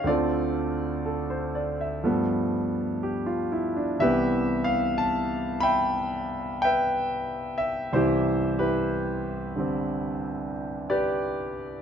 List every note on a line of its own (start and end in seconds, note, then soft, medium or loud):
0.04 2.02 D2 medium
0.04 2.03 D3 soft
0.04 2.04 C4 medium
0.04 1.54 D5 medium
0.08 2.00 F4 soft
0.08 1.04 A4 medium
1.06 1.50 A4 soft
1.30 1.71 C5 soft
1.55 1.85 D5 soft
1.81 2.14 E5 soft
2.04 4.00 G2 soft
2.04 4.00 F3 soft
2.04 4.01 A3 soft
2.04 4.01 B3 medium
3.03 3.48 G4 soft
3.26 3.68 F4 medium
3.52 3.82 E4 medium
3.76 4.10 D4 medium
3.99 7.91 C2 soft
3.99 7.92 C3 soft
3.99 7.92 E3 soft
3.99 5.93 G4 medium
3.99 5.93 B4 medium
3.99 4.67 E5 medium
4.03 7.95 B3 medium
4.64 4.72 F5 medium
4.98 5.12 A5 medium
5.60 6.63 E5 medium
5.60 6.60 G5 medium
5.60 6.56 B5 loud
6.62 8.56 B4 medium
6.62 7.56 E5 medium
6.62 7.56 G5 medium
7.58 7.90 E5 medium
7.92 11.82 C2 medium
7.92 11.82 C3 soft
7.92 11.82 E3 medium
7.92 8.58 E4 medium
7.92 8.57 G4 medium
7.92 8.54 C5 medium
8.59 10.52 E4 soft
8.59 10.51 G4 soft
8.59 9.53 B4 medium
9.56 11.82 D3 soft
9.56 11.82 G3 soft
9.56 11.82 C4 soft
10.90 11.82 G4 medium
10.90 11.82 B4 medium
10.90 11.82 D5 medium